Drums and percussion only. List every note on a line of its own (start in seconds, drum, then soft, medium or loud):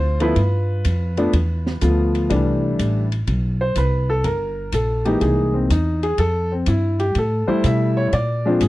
0.20 ride medium
0.36 kick soft
0.36 ride medium
0.85 kick soft
0.85 hi-hat pedal medium
0.85 ride medium
1.17 ride soft
1.33 kick soft
1.33 ride medium
1.66 snare medium
1.81 kick soft
1.81 hi-hat pedal medium
1.81 ride medium
2.15 ride medium
2.30 kick soft
2.30 ride medium
2.79 kick soft
2.79 hi-hat pedal medium
2.79 ride medium
3.12 ride soft
3.27 kick soft
3.27 ride medium
3.75 kick soft
3.75 hi-hat pedal medium
3.75 ride medium
4.24 kick soft
4.24 ride medium
4.72 kick soft
4.72 hi-hat pedal medium
4.72 ride medium
5.05 ride soft
5.21 kick soft
5.21 ride medium
5.70 kick soft
5.70 hi-hat pedal medium
5.70 ride medium
6.03 ride soft
6.18 kick soft
6.18 ride medium
6.66 kick soft
6.66 hi-hat pedal medium
6.66 ride medium
6.99 ride soft
7.15 kick soft
7.15 ride medium
7.64 kick soft
7.64 hi-hat pedal medium
7.64 ride medium
8.12 kick soft
8.12 ride medium
8.60 kick soft
8.60 hi-hat pedal medium
8.60 ride medium